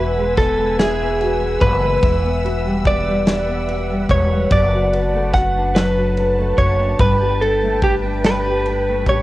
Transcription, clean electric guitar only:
Already playing: B4
0.38 A4
0.79 G#4
1.61 B4
2.87 D5
4.11 C#5
4.52 D5
5.34 F#5
5.75 B4
6.58 C#5
7.00 B4
7.41 A4
7.83 G4
8.26 B4
9.09 C#5

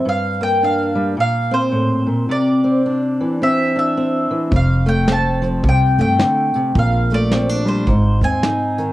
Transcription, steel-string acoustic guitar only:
0.05 G2
0.41 A#3
0.63 D4
0.95 G3
1.17 A#2
1.51 C4
1.72 A2
2.07 A#2
2.29 C3
2.64 C4
2.86 D4
3.21 E3
3.42 C4
3.76 D4
3.97 C4
4.31 E3
4.51 F2
4.86 A3
5.08 C4
5.42 F3
5.63 C3
5.99 A3
6.18 D3
6.55 C3
6.76 A#2
7.12 A3
7.32 C4
7.49 D4
7.65 G3
7.88 G#2
8.23 C4
8.44 D#4
8.78 D#3

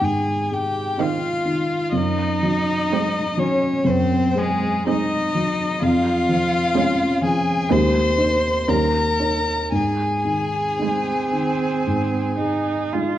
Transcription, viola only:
1.00 C4
2.93 C4
4.87 C4
6.78 C#4
7.71 C4
8.68 C#4
10.80 C4
12.38 D#4
12.93 F4

